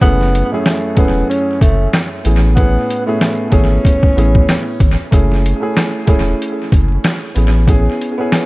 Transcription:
0.01 sub bass F#1, grand piano F#2 A3 C#4 E4 G#4, tenor saxophone B3, kick, closed hi-hat
0.21 snare
0.35 closed hi-hat
0.51 grand piano F#2 A3 C#4 E4 G#4, tenor saxophone A3
0.66 cross-stick, snare, closed hi-hat
0.95 sub bass E1, grand piano F#2 A3 C#4 E4 G#4, tenor saxophone B3, kick, closed hi-hat
1.29 tenor saxophone C#4, closed hi-hat
1.61 sub bass F#1, tenor saxophone A3, kick, closed hi-hat
1.93 cross-stick, snare, closed hi-hat
2.24 sub bass A1, grand piano A2 B3 C#4 E4 G#4, closed hi-hat
2.55 grand piano A2 B3 C#4 E4, tenor saxophone B3, kick, closed hi-hat
2.60 grand piano G#4
2.90 closed hi-hat
3.06 grand piano A2 B3 C#4 E4 G#4, tenor saxophone A3
3.21 cross-stick, snare, closed hi-hat
3.50 sub bass G#1, grand piano A3 B3 C#4 E4 G#4, tenor saxophone C#4, kick, closed hi-hat
3.85 kick, closed hi-hat
4.03 kick
4.15 sub bass A1, grand piano A2 B3 C#4 E4 G#4, closed hi-hat
4.35 kick
4.49 cross-stick, snare, closed hi-hat
4.80 sub bass G#1, kick, closed hi-hat
5.11 sub bass F#1, grand piano A3 C#4 E4 G#4, kick, closed hi-hat
5.32 snare
5.46 closed hi-hat
5.60 grand piano A3 C#4 E4 G#4
5.77 cross-stick, snare, closed hi-hat
6.07 sub bass E1, grand piano A3 C#4 E4 G#4, kick, closed hi-hat
6.42 closed hi-hat
6.72 sub bass F#1, kick, closed hi-hat
7.04 cross-stick, snare, closed hi-hat
7.35 sub bass A1, grand piano B3 C#4 E4 G#4, closed hi-hat
7.67 grand piano B3 C#4 E4 G#4, kick, closed hi-hat
8.01 closed hi-hat
8.18 grand piano B3 C#4 E4 G#4
8.32 cross-stick, snare, closed hi-hat

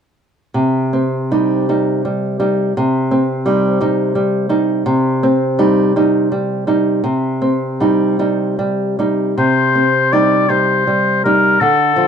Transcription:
0.54 nylon-string guitar C3
0.93 nylon-string guitar C4
1.31 nylon-string guitar G3 D#4
1.69 nylon-string guitar G3 D#4
2.05 nylon-string guitar G3
2.40 nylon-string guitar G3 D#4
2.77 nylon-string guitar C3
3.11 nylon-string guitar C4
3.46 nylon-string guitar G3 D#4
3.81 nylon-string guitar G3 D#4
4.15 nylon-string guitar G3
4.49 nylon-string guitar G3 D#4
4.86 nylon-string guitar C3
5.23 nylon-string guitar C4
5.59 nylon-string guitar G3 D#4
5.96 nylon-string guitar G3 D#4
6.32 nylon-string guitar G3
6.67 nylon-string guitar G3 D#4
7.04 nylon-string guitar C3
7.42 nylon-string guitar C4
7.80 nylon-string guitar G3 D#4
8.19 nylon-string guitar G3 D#4
8.59 nylon-string guitar G3
8.99 nylon-string guitar G3 D#4
9.38 nylon-string guitar C3, oboe C5
9.75 nylon-string guitar C4
10.12 nylon-string guitar G3 D#4, oboe D5
10.49 nylon-string guitar G3 D#4, oboe C5
10.87 nylon-string guitar G3
11.24 nylon-string guitar G3 D#4, oboe A#4
11.60 nylon-string guitar D3, oboe A4
11.96 nylon-string guitar F3

